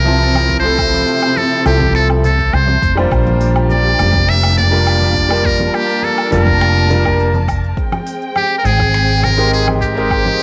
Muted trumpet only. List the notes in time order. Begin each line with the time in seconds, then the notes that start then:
Already playing: A#4
0.60 C5
1.38 A4
1.66 G4
1.96 A4
2.25 A4
2.54 C5
3.70 D5
4.29 E5
4.58 D5
5.46 A#4
5.75 G4
6.04 A4
6.33 A#4
8.37 G4
8.58 A#4
8.65 G#4
9.24 A#4
9.53 G#4
9.83 G4